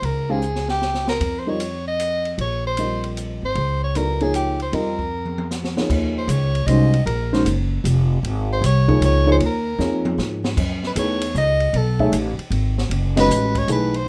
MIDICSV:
0, 0, Header, 1, 6, 480
1, 0, Start_track
1, 0, Tempo, 390117
1, 36, Time_signature, 3, 2, 24, 8
1, 17329, End_track
2, 0, Start_track
2, 0, Title_t, "Soprano saxophone"
2, 0, Program_c, 0, 64
2, 64, Note_on_c, 0, 70, 81
2, 390, Note_on_c, 0, 68, 82
2, 408, Note_off_c, 0, 70, 0
2, 855, Note_off_c, 0, 68, 0
2, 862, Note_on_c, 0, 67, 88
2, 1299, Note_off_c, 0, 67, 0
2, 1344, Note_on_c, 0, 70, 81
2, 1715, Note_on_c, 0, 72, 63
2, 1733, Note_off_c, 0, 70, 0
2, 1837, Note_on_c, 0, 73, 82
2, 1856, Note_off_c, 0, 72, 0
2, 2302, Note_off_c, 0, 73, 0
2, 2310, Note_on_c, 0, 75, 97
2, 2897, Note_off_c, 0, 75, 0
2, 2966, Note_on_c, 0, 73, 89
2, 3246, Note_off_c, 0, 73, 0
2, 3283, Note_on_c, 0, 72, 87
2, 3807, Note_off_c, 0, 72, 0
2, 4248, Note_on_c, 0, 72, 95
2, 4679, Note_off_c, 0, 72, 0
2, 4722, Note_on_c, 0, 73, 85
2, 4878, Note_on_c, 0, 70, 83
2, 4897, Note_off_c, 0, 73, 0
2, 5203, Note_on_c, 0, 68, 75
2, 5221, Note_off_c, 0, 70, 0
2, 5351, Note_off_c, 0, 68, 0
2, 5358, Note_on_c, 0, 67, 82
2, 5645, Note_off_c, 0, 67, 0
2, 5685, Note_on_c, 0, 72, 80
2, 5847, Note_on_c, 0, 70, 76
2, 5865, Note_off_c, 0, 72, 0
2, 6793, Note_off_c, 0, 70, 0
2, 7606, Note_on_c, 0, 72, 77
2, 7748, Note_on_c, 0, 73, 88
2, 7767, Note_off_c, 0, 72, 0
2, 8206, Note_on_c, 0, 75, 102
2, 8224, Note_off_c, 0, 73, 0
2, 8681, Note_off_c, 0, 75, 0
2, 8688, Note_on_c, 0, 70, 78
2, 9139, Note_off_c, 0, 70, 0
2, 10494, Note_on_c, 0, 72, 95
2, 10626, Note_off_c, 0, 72, 0
2, 10654, Note_on_c, 0, 73, 105
2, 11082, Note_off_c, 0, 73, 0
2, 11142, Note_on_c, 0, 73, 105
2, 11415, Note_off_c, 0, 73, 0
2, 11466, Note_on_c, 0, 72, 82
2, 11526, Note_off_c, 0, 72, 0
2, 11640, Note_on_c, 0, 70, 82
2, 12515, Note_off_c, 0, 70, 0
2, 13374, Note_on_c, 0, 71, 70
2, 13436, Note_off_c, 0, 71, 0
2, 13526, Note_on_c, 0, 73, 83
2, 13954, Note_off_c, 0, 73, 0
2, 14000, Note_on_c, 0, 75, 105
2, 14484, Note_on_c, 0, 69, 84
2, 14502, Note_off_c, 0, 75, 0
2, 14943, Note_off_c, 0, 69, 0
2, 16236, Note_on_c, 0, 71, 94
2, 16712, Note_on_c, 0, 73, 102
2, 16730, Note_off_c, 0, 71, 0
2, 16855, Note_off_c, 0, 73, 0
2, 16883, Note_on_c, 0, 71, 93
2, 17190, Note_on_c, 0, 72, 94
2, 17209, Note_off_c, 0, 71, 0
2, 17329, Note_off_c, 0, 72, 0
2, 17329, End_track
3, 0, Start_track
3, 0, Title_t, "Grand piano"
3, 0, Program_c, 1, 0
3, 362, Note_on_c, 1, 56, 62
3, 364, Note_on_c, 1, 67, 60
3, 365, Note_on_c, 1, 72, 58
3, 366, Note_on_c, 1, 61, 61
3, 371, Note_on_c, 1, 77, 67
3, 505, Note_off_c, 1, 56, 0
3, 506, Note_off_c, 1, 67, 0
3, 507, Note_off_c, 1, 61, 0
3, 507, Note_off_c, 1, 72, 0
3, 510, Note_off_c, 1, 77, 0
3, 1809, Note_on_c, 1, 55, 58
3, 1811, Note_on_c, 1, 70, 49
3, 1812, Note_on_c, 1, 65, 50
3, 1815, Note_on_c, 1, 60, 53
3, 1818, Note_on_c, 1, 75, 63
3, 1952, Note_off_c, 1, 55, 0
3, 1953, Note_off_c, 1, 65, 0
3, 1953, Note_off_c, 1, 70, 0
3, 1955, Note_off_c, 1, 60, 0
3, 1956, Note_off_c, 1, 75, 0
3, 3426, Note_on_c, 1, 55, 49
3, 3428, Note_on_c, 1, 60, 47
3, 3432, Note_on_c, 1, 65, 46
3, 3436, Note_on_c, 1, 75, 59
3, 3437, Note_on_c, 1, 70, 45
3, 4156, Note_off_c, 1, 55, 0
3, 4156, Note_off_c, 1, 60, 0
3, 4159, Note_off_c, 1, 65, 0
3, 4161, Note_off_c, 1, 70, 0
3, 4161, Note_off_c, 1, 75, 0
3, 4865, Note_on_c, 1, 59, 49
3, 4872, Note_on_c, 1, 54, 55
3, 4873, Note_on_c, 1, 69, 49
3, 4875, Note_on_c, 1, 64, 44
3, 4877, Note_on_c, 1, 74, 61
3, 5147, Note_off_c, 1, 59, 0
3, 5151, Note_off_c, 1, 54, 0
3, 5152, Note_off_c, 1, 64, 0
3, 5152, Note_off_c, 1, 69, 0
3, 5154, Note_off_c, 1, 74, 0
3, 5183, Note_on_c, 1, 53, 54
3, 5183, Note_on_c, 1, 58, 53
3, 5186, Note_on_c, 1, 63, 54
3, 5186, Note_on_c, 1, 68, 53
3, 5191, Note_on_c, 1, 73, 62
3, 5596, Note_off_c, 1, 53, 0
3, 5596, Note_off_c, 1, 58, 0
3, 5598, Note_off_c, 1, 63, 0
3, 5598, Note_off_c, 1, 68, 0
3, 5600, Note_off_c, 1, 73, 0
3, 5820, Note_on_c, 1, 55, 57
3, 5821, Note_on_c, 1, 65, 55
3, 5822, Note_on_c, 1, 60, 51
3, 5822, Note_on_c, 1, 70, 54
3, 5832, Note_on_c, 1, 75, 65
3, 6106, Note_off_c, 1, 55, 0
3, 6106, Note_off_c, 1, 65, 0
3, 6107, Note_off_c, 1, 60, 0
3, 6107, Note_off_c, 1, 70, 0
3, 6112, Note_off_c, 1, 75, 0
3, 7092, Note_on_c, 1, 53, 51
3, 7097, Note_on_c, 1, 68, 45
3, 7102, Note_on_c, 1, 58, 48
3, 7103, Note_on_c, 1, 63, 49
3, 7103, Note_on_c, 1, 73, 53
3, 7704, Note_off_c, 1, 53, 0
3, 7707, Note_off_c, 1, 68, 0
3, 7709, Note_off_c, 1, 58, 0
3, 7709, Note_off_c, 1, 63, 0
3, 7709, Note_off_c, 1, 73, 0
3, 8220, Note_on_c, 1, 61, 60
3, 8222, Note_on_c, 1, 51, 66
3, 8226, Note_on_c, 1, 66, 65
3, 8230, Note_on_c, 1, 56, 60
3, 8231, Note_on_c, 1, 72, 75
3, 8506, Note_off_c, 1, 61, 0
3, 8507, Note_off_c, 1, 51, 0
3, 8509, Note_off_c, 1, 66, 0
3, 8511, Note_off_c, 1, 56, 0
3, 8511, Note_off_c, 1, 72, 0
3, 9015, Note_on_c, 1, 51, 69
3, 9015, Note_on_c, 1, 66, 64
3, 9016, Note_on_c, 1, 56, 67
3, 9016, Note_on_c, 1, 61, 67
3, 9019, Note_on_c, 1, 72, 79
3, 9161, Note_off_c, 1, 51, 0
3, 9161, Note_off_c, 1, 56, 0
3, 9161, Note_off_c, 1, 66, 0
3, 9162, Note_off_c, 1, 61, 0
3, 9163, Note_off_c, 1, 72, 0
3, 10927, Note_on_c, 1, 53, 68
3, 10930, Note_on_c, 1, 58, 63
3, 10930, Note_on_c, 1, 63, 64
3, 10931, Note_on_c, 1, 73, 80
3, 10935, Note_on_c, 1, 68, 63
3, 11378, Note_off_c, 1, 53, 0
3, 11379, Note_off_c, 1, 58, 0
3, 11379, Note_off_c, 1, 63, 0
3, 11379, Note_off_c, 1, 73, 0
3, 11382, Note_off_c, 1, 68, 0
3, 11402, Note_on_c, 1, 53, 73
3, 11404, Note_on_c, 1, 58, 61
3, 11404, Note_on_c, 1, 63, 68
3, 11410, Note_on_c, 1, 68, 67
3, 11410, Note_on_c, 1, 73, 87
3, 11552, Note_off_c, 1, 53, 0
3, 11553, Note_off_c, 1, 58, 0
3, 11553, Note_off_c, 1, 63, 0
3, 11556, Note_off_c, 1, 68, 0
3, 11556, Note_off_c, 1, 73, 0
3, 12047, Note_on_c, 1, 53, 58
3, 12051, Note_on_c, 1, 63, 51
3, 12052, Note_on_c, 1, 58, 55
3, 12057, Note_on_c, 1, 73, 60
3, 12060, Note_on_c, 1, 68, 53
3, 12783, Note_off_c, 1, 53, 0
3, 12784, Note_off_c, 1, 63, 0
3, 12785, Note_off_c, 1, 58, 0
3, 12788, Note_off_c, 1, 73, 0
3, 12789, Note_off_c, 1, 68, 0
3, 13489, Note_on_c, 1, 57, 50
3, 13496, Note_on_c, 1, 52, 57
3, 13496, Note_on_c, 1, 63, 50
3, 13496, Note_on_c, 1, 71, 60
3, 13497, Note_on_c, 1, 68, 52
3, 13775, Note_off_c, 1, 57, 0
3, 13778, Note_off_c, 1, 52, 0
3, 13778, Note_off_c, 1, 63, 0
3, 13778, Note_off_c, 1, 71, 0
3, 13779, Note_off_c, 1, 68, 0
3, 14758, Note_on_c, 1, 68, 67
3, 14760, Note_on_c, 1, 63, 66
3, 14763, Note_on_c, 1, 57, 71
3, 14763, Note_on_c, 1, 73, 66
3, 14766, Note_on_c, 1, 76, 76
3, 14905, Note_off_c, 1, 68, 0
3, 14907, Note_off_c, 1, 63, 0
3, 14908, Note_off_c, 1, 57, 0
3, 14908, Note_off_c, 1, 73, 0
3, 14910, Note_off_c, 1, 76, 0
3, 16194, Note_on_c, 1, 56, 73
3, 16197, Note_on_c, 1, 61, 68
3, 16202, Note_on_c, 1, 66, 66
3, 16203, Note_on_c, 1, 75, 87
3, 16204, Note_on_c, 1, 71, 71
3, 16803, Note_off_c, 1, 56, 0
3, 16805, Note_off_c, 1, 61, 0
3, 16808, Note_off_c, 1, 66, 0
3, 16808, Note_off_c, 1, 75, 0
3, 16809, Note_off_c, 1, 71, 0
3, 16842, Note_on_c, 1, 52, 65
3, 16844, Note_on_c, 1, 57, 57
3, 16845, Note_on_c, 1, 68, 56
3, 16851, Note_on_c, 1, 63, 57
3, 16851, Note_on_c, 1, 71, 66
3, 17126, Note_off_c, 1, 52, 0
3, 17127, Note_off_c, 1, 57, 0
3, 17127, Note_off_c, 1, 68, 0
3, 17130, Note_off_c, 1, 63, 0
3, 17130, Note_off_c, 1, 71, 0
3, 17329, End_track
4, 0, Start_track
4, 0, Title_t, "Upright bass"
4, 0, Program_c, 2, 32
4, 26, Note_on_c, 2, 37, 69
4, 1429, Note_off_c, 2, 37, 0
4, 1480, Note_on_c, 2, 41, 68
4, 2878, Note_off_c, 2, 41, 0
4, 2928, Note_on_c, 2, 34, 77
4, 4162, Note_off_c, 2, 34, 0
4, 4213, Note_on_c, 2, 32, 61
4, 4363, Note_off_c, 2, 32, 0
4, 4372, Note_on_c, 2, 37, 79
4, 5767, Note_off_c, 2, 37, 0
4, 5813, Note_on_c, 2, 41, 74
4, 7208, Note_off_c, 2, 41, 0
4, 7255, Note_on_c, 2, 39, 79
4, 7716, Note_off_c, 2, 39, 0
4, 7723, Note_on_c, 2, 37, 92
4, 8192, Note_off_c, 2, 37, 0
4, 8200, Note_on_c, 2, 36, 82
4, 8674, Note_off_c, 2, 36, 0
4, 8684, Note_on_c, 2, 34, 85
4, 9156, Note_off_c, 2, 34, 0
4, 9170, Note_on_c, 2, 30, 94
4, 9639, Note_off_c, 2, 30, 0
4, 9646, Note_on_c, 2, 29, 87
4, 10116, Note_off_c, 2, 29, 0
4, 10125, Note_on_c, 2, 32, 82
4, 10595, Note_off_c, 2, 32, 0
4, 10601, Note_on_c, 2, 36, 93
4, 11073, Note_off_c, 2, 36, 0
4, 11084, Note_on_c, 2, 37, 89
4, 11554, Note_off_c, 2, 37, 0
4, 11567, Note_on_c, 2, 39, 83
4, 12035, Note_off_c, 2, 39, 0
4, 12040, Note_on_c, 2, 41, 85
4, 12510, Note_off_c, 2, 41, 0
4, 12524, Note_on_c, 2, 44, 84
4, 12992, Note_off_c, 2, 44, 0
4, 13007, Note_on_c, 2, 42, 77
4, 13472, Note_off_c, 2, 42, 0
4, 13481, Note_on_c, 2, 40, 90
4, 13949, Note_off_c, 2, 40, 0
4, 13960, Note_on_c, 2, 37, 86
4, 14427, Note_off_c, 2, 37, 0
4, 14433, Note_on_c, 2, 35, 84
4, 14903, Note_off_c, 2, 35, 0
4, 14913, Note_on_c, 2, 33, 92
4, 15214, Note_off_c, 2, 33, 0
4, 15385, Note_on_c, 2, 32, 84
4, 15858, Note_off_c, 2, 32, 0
4, 15867, Note_on_c, 2, 30, 77
4, 16338, Note_off_c, 2, 30, 0
4, 16347, Note_on_c, 2, 33, 93
4, 16817, Note_off_c, 2, 33, 0
4, 16828, Note_on_c, 2, 35, 81
4, 17293, Note_off_c, 2, 35, 0
4, 17329, End_track
5, 0, Start_track
5, 0, Title_t, "Muted upright bass strokes"
5, 15233, Note_on_c, 9, 29, 39
5, 15356, Note_off_c, 9, 29, 0
5, 17329, End_track
6, 0, Start_track
6, 0, Title_t, "Drums"
6, 37, Note_on_c, 9, 51, 49
6, 160, Note_off_c, 9, 51, 0
6, 514, Note_on_c, 9, 44, 54
6, 637, Note_off_c, 9, 44, 0
6, 681, Note_on_c, 9, 38, 41
6, 804, Note_off_c, 9, 38, 0
6, 842, Note_on_c, 9, 38, 56
6, 965, Note_off_c, 9, 38, 0
6, 1004, Note_on_c, 9, 38, 47
6, 1127, Note_off_c, 9, 38, 0
6, 1159, Note_on_c, 9, 38, 51
6, 1282, Note_off_c, 9, 38, 0
6, 1323, Note_on_c, 9, 38, 68
6, 1446, Note_off_c, 9, 38, 0
6, 1483, Note_on_c, 9, 36, 59
6, 1486, Note_on_c, 9, 51, 57
6, 1606, Note_off_c, 9, 36, 0
6, 1609, Note_off_c, 9, 51, 0
6, 1967, Note_on_c, 9, 44, 47
6, 1967, Note_on_c, 9, 51, 56
6, 2090, Note_off_c, 9, 44, 0
6, 2090, Note_off_c, 9, 51, 0
6, 2455, Note_on_c, 9, 44, 43
6, 2455, Note_on_c, 9, 51, 58
6, 2578, Note_off_c, 9, 44, 0
6, 2578, Note_off_c, 9, 51, 0
6, 2770, Note_on_c, 9, 51, 37
6, 2894, Note_off_c, 9, 51, 0
6, 2933, Note_on_c, 9, 51, 51
6, 3056, Note_off_c, 9, 51, 0
6, 3408, Note_on_c, 9, 44, 46
6, 3408, Note_on_c, 9, 51, 54
6, 3531, Note_off_c, 9, 44, 0
6, 3531, Note_off_c, 9, 51, 0
6, 3735, Note_on_c, 9, 51, 41
6, 3858, Note_off_c, 9, 51, 0
6, 3900, Note_on_c, 9, 44, 46
6, 3900, Note_on_c, 9, 51, 50
6, 4024, Note_off_c, 9, 44, 0
6, 4024, Note_off_c, 9, 51, 0
6, 4372, Note_on_c, 9, 51, 49
6, 4495, Note_off_c, 9, 51, 0
6, 4861, Note_on_c, 9, 44, 49
6, 4861, Note_on_c, 9, 51, 58
6, 4984, Note_off_c, 9, 44, 0
6, 4984, Note_off_c, 9, 51, 0
6, 5174, Note_on_c, 9, 51, 37
6, 5297, Note_off_c, 9, 51, 0
6, 5338, Note_on_c, 9, 44, 54
6, 5338, Note_on_c, 9, 51, 52
6, 5462, Note_off_c, 9, 44, 0
6, 5462, Note_off_c, 9, 51, 0
6, 5655, Note_on_c, 9, 51, 36
6, 5778, Note_off_c, 9, 51, 0
6, 5819, Note_on_c, 9, 51, 52
6, 5942, Note_off_c, 9, 51, 0
6, 6137, Note_on_c, 9, 36, 43
6, 6260, Note_off_c, 9, 36, 0
6, 6465, Note_on_c, 9, 48, 42
6, 6588, Note_off_c, 9, 48, 0
6, 6620, Note_on_c, 9, 48, 58
6, 6743, Note_off_c, 9, 48, 0
6, 6777, Note_on_c, 9, 38, 52
6, 6778, Note_on_c, 9, 44, 48
6, 6900, Note_off_c, 9, 38, 0
6, 6901, Note_off_c, 9, 44, 0
6, 6941, Note_on_c, 9, 38, 56
6, 7064, Note_off_c, 9, 38, 0
6, 7100, Note_on_c, 9, 38, 68
6, 7223, Note_off_c, 9, 38, 0
6, 7258, Note_on_c, 9, 36, 65
6, 7262, Note_on_c, 9, 49, 66
6, 7381, Note_off_c, 9, 36, 0
6, 7385, Note_off_c, 9, 49, 0
6, 7735, Note_on_c, 9, 44, 62
6, 7735, Note_on_c, 9, 51, 62
6, 7858, Note_off_c, 9, 44, 0
6, 7858, Note_off_c, 9, 51, 0
6, 8058, Note_on_c, 9, 51, 44
6, 8181, Note_off_c, 9, 51, 0
6, 8215, Note_on_c, 9, 44, 47
6, 8215, Note_on_c, 9, 51, 61
6, 8338, Note_off_c, 9, 44, 0
6, 8338, Note_off_c, 9, 51, 0
6, 8533, Note_on_c, 9, 51, 43
6, 8656, Note_off_c, 9, 51, 0
6, 8698, Note_on_c, 9, 51, 56
6, 8821, Note_off_c, 9, 51, 0
6, 9021, Note_on_c, 9, 38, 55
6, 9144, Note_off_c, 9, 38, 0
6, 9177, Note_on_c, 9, 44, 56
6, 9177, Note_on_c, 9, 51, 65
6, 9300, Note_off_c, 9, 44, 0
6, 9300, Note_off_c, 9, 51, 0
6, 9660, Note_on_c, 9, 44, 58
6, 9660, Note_on_c, 9, 51, 62
6, 9783, Note_off_c, 9, 44, 0
6, 9783, Note_off_c, 9, 51, 0
6, 10144, Note_on_c, 9, 51, 54
6, 10267, Note_off_c, 9, 51, 0
6, 10626, Note_on_c, 9, 44, 51
6, 10626, Note_on_c, 9, 51, 68
6, 10749, Note_off_c, 9, 44, 0
6, 10749, Note_off_c, 9, 51, 0
6, 10936, Note_on_c, 9, 36, 64
6, 11059, Note_off_c, 9, 36, 0
6, 11097, Note_on_c, 9, 44, 45
6, 11097, Note_on_c, 9, 51, 64
6, 11220, Note_off_c, 9, 44, 0
6, 11220, Note_off_c, 9, 51, 0
6, 11570, Note_on_c, 9, 51, 53
6, 11693, Note_off_c, 9, 51, 0
6, 12056, Note_on_c, 9, 38, 44
6, 12057, Note_on_c, 9, 44, 48
6, 12179, Note_off_c, 9, 38, 0
6, 12180, Note_off_c, 9, 44, 0
6, 12367, Note_on_c, 9, 48, 71
6, 12490, Note_off_c, 9, 48, 0
6, 12531, Note_on_c, 9, 38, 55
6, 12654, Note_off_c, 9, 38, 0
6, 12849, Note_on_c, 9, 38, 74
6, 12972, Note_off_c, 9, 38, 0
6, 13008, Note_on_c, 9, 36, 68
6, 13010, Note_on_c, 9, 49, 70
6, 13131, Note_off_c, 9, 36, 0
6, 13133, Note_off_c, 9, 49, 0
6, 13328, Note_on_c, 9, 38, 39
6, 13451, Note_off_c, 9, 38, 0
6, 13484, Note_on_c, 9, 44, 57
6, 13484, Note_on_c, 9, 51, 70
6, 13607, Note_off_c, 9, 44, 0
6, 13607, Note_off_c, 9, 51, 0
6, 13798, Note_on_c, 9, 51, 69
6, 13921, Note_off_c, 9, 51, 0
6, 13962, Note_on_c, 9, 44, 47
6, 14085, Note_off_c, 9, 44, 0
6, 14275, Note_on_c, 9, 51, 40
6, 14398, Note_off_c, 9, 51, 0
6, 14440, Note_on_c, 9, 51, 55
6, 14563, Note_off_c, 9, 51, 0
6, 14758, Note_on_c, 9, 36, 50
6, 14881, Note_off_c, 9, 36, 0
6, 14920, Note_on_c, 9, 44, 59
6, 14920, Note_on_c, 9, 51, 69
6, 15043, Note_off_c, 9, 44, 0
6, 15043, Note_off_c, 9, 51, 0
6, 15242, Note_on_c, 9, 51, 44
6, 15365, Note_off_c, 9, 51, 0
6, 15398, Note_on_c, 9, 51, 59
6, 15521, Note_off_c, 9, 51, 0
6, 15725, Note_on_c, 9, 38, 57
6, 15848, Note_off_c, 9, 38, 0
6, 15885, Note_on_c, 9, 51, 64
6, 16008, Note_off_c, 9, 51, 0
6, 16204, Note_on_c, 9, 38, 81
6, 16206, Note_on_c, 9, 51, 66
6, 16328, Note_off_c, 9, 38, 0
6, 16329, Note_off_c, 9, 51, 0
6, 16368, Note_on_c, 9, 44, 65
6, 16491, Note_off_c, 9, 44, 0
6, 16673, Note_on_c, 9, 36, 53
6, 16675, Note_on_c, 9, 51, 47
6, 16796, Note_off_c, 9, 36, 0
6, 16798, Note_off_c, 9, 51, 0
6, 16833, Note_on_c, 9, 44, 56
6, 16833, Note_on_c, 9, 51, 59
6, 16956, Note_off_c, 9, 44, 0
6, 16956, Note_off_c, 9, 51, 0
6, 17154, Note_on_c, 9, 51, 43
6, 17277, Note_off_c, 9, 51, 0
6, 17329, End_track
0, 0, End_of_file